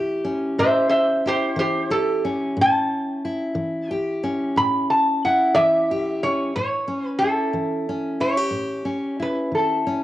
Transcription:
Already playing: steel-string acoustic guitar E3 E4 G4
0.25 steel-string acoustic guitar C#4
0.58 steel-string acoustic guitar A2, resonator guitar played with a steel bar C5 E5
0.89 resonator guitar played with a steel bar C5 E5
1.26 steel-string acoustic guitar E4, resonator guitar played with a steel bar G4 C5
1.56 steel-string acoustic guitar E3, resonator guitar played with a steel bar G4 C5
1.90 steel-string acoustic guitar G4, resonator guitar played with a steel bar A4
2.25 steel-string acoustic guitar C#4
2.57 steel-string acoustic guitar A2
2.61 resonator guitar played with a steel bar A5
3.25 steel-string acoustic guitar E4
3.55 steel-string acoustic guitar E3
3.89 steel-string acoustic guitar G4, resonator guitar played with a steel bar G5
4.24 steel-string acoustic guitar C#4
4.56 steel-string acoustic guitar A2, resonator guitar played with a steel bar B5
4.90 resonator guitar played with a steel bar A5
5.25 steel-string acoustic guitar E4, resonator guitar played with a steel bar F#5
5.55 steel-string acoustic guitar E3, resonator guitar played with a steel bar E5
5.91 steel-string acoustic guitar G4
6.23 steel-string acoustic guitar C#4, resonator guitar played with a steel bar C#5
6.56 steel-string acoustic guitar A2, resonator guitar played with a steel bar C#5
6.88 steel-string acoustic guitar C#4
7.07 resonator guitar played with a steel bar B4
7.18 steel-string acoustic guitar E4, resonator guitar played with a steel bar A4
7.53 steel-string acoustic guitar E3
7.89 steel-string acoustic guitar C#4
8.20 steel-string acoustic guitar E4, resonator guitar played with a steel bar C#5
8.37 steel-string acoustic guitar G4
8.51 steel-string acoustic guitar A2
8.85 steel-string acoustic guitar C#4
9.20 steel-string acoustic guitar E4, resonator guitar played with a steel bar B4
9.52 steel-string acoustic guitar E3, resonator guitar played with a steel bar A4
9.87 steel-string acoustic guitar C#4

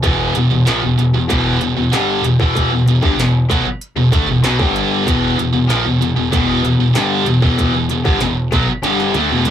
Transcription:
0.03 picked electric bass E1, overdriven electric guitar E2 B2 E3, kick, closed hi-hat
0.35 picked electric bass E1, overdriven electric guitar E2 B2, closed hi-hat
0.51 picked electric bass E1, overdriven electric guitar E2 B2
0.66 picked electric bass A#1, overdriven electric guitar A#2 F3, snare, closed hi-hat
0.82 picked electric bass E1, overdriven electric guitar E2 B2
0.97 picked electric bass E1, overdriven electric guitar E2 B2, closed hi-hat
1.13 picked electric bass E1, overdriven electric guitar E2 B2
1.28 picked electric bass E1, overdriven electric guitar E2 B2 E3, kick, closed hi-hat
1.60 picked electric bass E1, overdriven electric guitar E2 B2, closed hi-hat
1.75 picked electric bass E1, overdriven electric guitar E2 B2
1.92 picked electric bass G1, overdriven electric guitar G2 D3 G3, snare, closed hi-hat
2.23 picked electric bass E1, overdriven electric guitar E2 B2, closed hi-hat
2.39 picked electric bass E1, overdriven electric guitar E2 B2 E3, kick
2.55 kick, closed hi-hat
2.71 picked electric bass E1, overdriven electric guitar E2 B2
2.85 picked electric bass E1, overdriven electric guitar E2 B2, closed hi-hat
3.01 picked electric bass G1, overdriven electric guitar G2 D3, kick
3.17 picked electric bass E1, overdriven electric guitar E2 B2, snare, closed hi-hat
3.49 picked electric bass B1, overdriven electric guitar B2 F#3, kick, closed hi-hat
3.64 muted picked electric bass stroke, muted overdriven electric guitar stroke, muted distorted electric guitar stroke
3.81 closed hi-hat
3.96 picked electric bass E1, overdriven electric guitar E2 B2
4.11 picked electric bass D2, overdriven electric guitar D3 A3, kick, closed hi-hat
4.27 picked electric bass E1, overdriven electric guitar E2 B2
4.42 picked electric bass B1, overdriven electric guitar B2 F#3, snare, closed hi-hat
4.59 picked electric bass G1, overdriven electric guitar G2 D3 G3, kick
4.76 closed hi-hat
5.05 picked electric bass E1, overdriven electric guitar E2 B2 E3, kick, closed hi-hat
5.36 picked electric bass E1, overdriven electric guitar E2 B2, closed hi-hat
5.53 picked electric bass E1, overdriven electric guitar E2 B2
5.67 picked electric bass A#1, overdriven electric guitar A#2 F3, snare, closed hi-hat
5.83 picked electric bass E1, overdriven electric guitar E2 B2
5.99 picked electric bass E1, overdriven electric guitar E2 B2, closed hi-hat
6.15 picked electric bass E1, overdriven electric guitar E2 B2
6.31 picked electric bass E1, overdriven electric guitar E2 B2 E3, kick, closed hi-hat
6.63 picked electric bass E1, overdriven electric guitar E2 B2, closed hi-hat
6.78 picked electric bass E1, overdriven electric guitar E2 B2
6.94 picked electric bass G1, overdriven electric guitar G2 D3 G3, snare, closed hi-hat
7.26 picked electric bass E1, overdriven electric guitar E2 B2, closed hi-hat
7.41 picked electric bass E1, overdriven electric guitar E2 B2 E3, kick
7.58 kick, closed hi-hat
7.73 picked electric bass E1, overdriven electric guitar E2 B2
7.89 picked electric bass E1, overdriven electric guitar E2 B2, closed hi-hat
8.04 picked electric bass G1, overdriven electric guitar G2 D3, kick
8.20 picked electric bass E1, overdriven electric guitar E2 B2, snare, closed hi-hat
8.51 picked electric bass B1, overdriven electric guitar B2 F#3, kick, closed hi-hat
8.67 muted overdriven electric guitar stroke, muted picked electric bass stroke, muted distorted electric guitar stroke
8.82 picked electric bass G1, overdriven electric guitar G2 D3 G3, snare, closed hi-hat
9.00 snare
9.14 picked electric bass D2, overdriven electric guitar D3 A3, closed hi-hat, high tom
9.30 picked electric bass E1, overdriven electric guitar E2 B2, high tom
9.45 picked electric bass D2, overdriven electric guitar D3 A3, closed hi-hat, mid tom

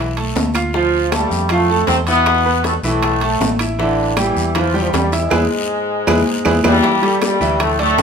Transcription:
Already playing: fingered electric bass B1, grand piano E3 E4 E5
0.17 grand piano A3 A4 A5, high conga, high timbale
0.35 fingered electric bass D2, high bongo, low bongo, high conga, low timbale, short guiro
0.54 grand piano F4 F5 F6, high bongo, high conga, high timbale, short guiro, claves
0.73 trombone section F3 F4, grand piano F3 F4 F5, high bongo, long guiro
0.93 high conga
1.12 trombone section G2 G3, grand piano A3 A4 A5, high bongo, high conga, high timbale, low timbale, short guiro, claves
1.31 fingered electric bass F2, high conga, short guiro
1.49 trombone section A2 A3, grand piano F3 F4 F5, high bongo, high conga, low conga, high timbale, long guiro, claves
1.70 grand piano A3 A4 A5, high conga
1.87 fingered electric bass E2, trombone section C3 C4, high bongo, low bongo, high conga, high timbale, low timbale, short guiro
2.07 trombone section B2 B3, grand piano E4 E5 E6, high conga, high timbale, short guiro
2.26 high bongo, high conga, high timbale, long guiro, claves
2.45 grand piano B3 B4 B5, high bongo, high conga
2.64 trombone section A2 A3, high bongo, high conga, high timbale, low timbale, short guiro
2.83 fingered electric bass B1, trombone section A2 A3, grand piano E3 E4 E5, high bongo, high conga, short guiro
3.02 high bongo, high conga, high timbale, long guiro, claves
3.21 grand piano A3 A4 A5, high conga, high timbale
3.40 fingered electric bass A1, high bongo, low bongo, high conga, low timbale, short guiro
3.59 grand piano E4 E5 E6, high bongo, high conga, high timbale, short guiro, claves
3.79 trombone section D3 D4, grand piano E3 E4 E5, high bongo, high conga, long guiro
3.99 high conga
4.17 trombone section E3 E4, grand piano G3 G4 G5, high bongo, high conga, high timbale, low timbale, short guiro, claves
4.36 fingered electric bass E2, high conga, short guiro
4.55 grand piano E3 E4 E5, trombone section F3 F4, high bongo, high conga, low conga, high timbale, long guiro, claves
4.74 trombone section G2 G3, grand piano G3 G4 G5, high conga, low conga
4.82 trombone section F3
4.90 fingered electric bass E2, trombone section G2 G3, short guiro
4.94 high bongo, low bongo, high conga, high timbale, low timbale
5.12 trombone section G#2 G#3, grand piano E4 E5 E6, high conga, high timbale, short guiro
5.30 fingered electric bass E2, grand piano E4 G#4 B4, low bongo, high conga, high timbale, long guiro, claves
6.07 fingered electric bass E2, grand piano E4 G#4 B4, low bongo, high conga, high timbale, long guiro, claves
6.45 fingered electric bass E2, grand piano E4 G#4 B4, low bongo, high conga, high timbale, long guiro, claves
6.64 fingered electric bass E2, trombone section G2 G3, grand piano E4 G#4 B4, low bongo, high conga, high timbale, long guiro, claves
6.83 grand piano E3 E4 E5, high bongo, high conga, high timbale, long guiro
7.02 grand piano G3 G4 A4, high bongo, high timbale
7.21 trombone section G2 G3, high bongo, high conga, high timbale, low timbale, short guiro, claves
7.41 fingered electric bass D2, grand piano E3 E4 E5, short guiro
7.60 trombone section A2 A3, high bongo, high conga, low conga, high timbale, long guiro, claves
7.79 trombone section A2 A3, grand piano A3 A4 D5, high bongo, high conga, low conga, high timbale
7.98 fingered electric bass G1, high bongo, low bongo, high conga, low timbale, short guiro

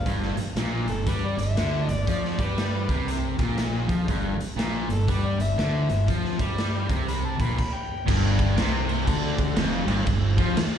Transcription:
0.06 fingered electric bass G1, distorted electric guitar G2, kick, closed hi-hat
0.22 snare
0.36 muted fingered electric bass stroke, muted distorted electric guitar stroke, closed hi-hat
0.56 fingered electric bass A#1, distorted electric guitar A#2, snare, closed hi-hat
0.86 fingered electric bass G1, distorted electric guitar G2, harmonica A4, closed hi-hat
1.07 fingered electric bass G2, distorted electric guitar G3, harmonica B4, kick, closed hi-hat
1.27 harmonica D5
1.37 fingered electric bass G1, distorted electric guitar G2, harmonica E5, closed hi-hat
1.56 fingered electric bass D2, distorted electric guitar D3, snare, closed hi-hat
1.87 fingered electric bass G1, distorted electric guitar G2, closed hi-hat
1.91 harmonica D5
2.06 fingered electric bass F2, distorted electric guitar F3, kick, closed hi-hat
2.11 harmonica D5
2.25 harmonica D5, snare
2.38 fingered electric bass G2, distorted electric guitar G3, kick, closed hi-hat
2.45 harmonica B4
2.58 harmonica D4 G4 B4, snare, closed hi-hat
2.89 fingered electric bass C2, distorted electric guitar C3, kick, closed hi-hat
3.08 closed hi-hat
3.39 fingered electric bass A#1, distorted electric guitar A#2, kick, closed hi-hat
3.58 snare, closed hi-hat
3.88 fingered electric bass F2, distorted electric guitar F3, kick, closed hi-hat
4.06 fingered electric bass G1, distorted electric guitar G2, kick, closed hi-hat
4.38 muted fingered electric bass stroke, muted distorted electric guitar stroke, closed hi-hat
4.56 fingered electric bass A#1, distorted electric guitar A#2, snare, closed hi-hat
4.87 fingered electric bass G1, distorted electric guitar G2, closed hi-hat
4.93 harmonica A4
5.08 fingered electric bass G2, distorted electric guitar G3, harmonica B4, kick, closed hi-hat
5.26 harmonica D5
5.38 fingered electric bass G1, distorted electric guitar G2, harmonica E5, closed hi-hat
5.56 fingered electric bass D2, distorted electric guitar D3, snare, closed hi-hat
5.89 fingered electric bass G1, distorted electric guitar G2, closed hi-hat
6.07 fingered electric bass F2, distorted electric guitar F3, kick, closed hi-hat
6.25 snare
6.39 fingered electric bass G2, distorted electric guitar G3, kick, closed hi-hat
6.58 snare, closed hi-hat
6.88 fingered electric bass C2, distorted electric guitar C3, kick, closed hi-hat
7.08 harmonica B5, closed hi-hat
7.25 harmonica A5
7.39 fingered electric bass A#1, distorted electric guitar A#2, harmonica B5, kick, closed hi-hat
7.58 harmonica B5, kick, crash
7.74 harmonica G5
8.07 fingered electric bass G1, distorted electric guitar G2, kick, crash
8.39 kick, crash
8.57 fingered electric bass C2, distorted electric guitar C3, snare, crash
8.89 crash
9.07 fingered electric bass D2, distorted electric guitar D3, kick, crash
9.38 kick, crash
9.56 fingered electric bass F1, distorted electric guitar F2, snare, crash
9.86 fingered electric bass G1, distorted electric guitar G2, crash
10.06 fingered electric bass G1, distorted electric guitar G2, kick, crash
10.37 fingered electric bass F2, distorted electric guitar F3, kick, crash
10.54 muted fingered electric bass stroke, muted distorted electric guitar stroke, snare, crash

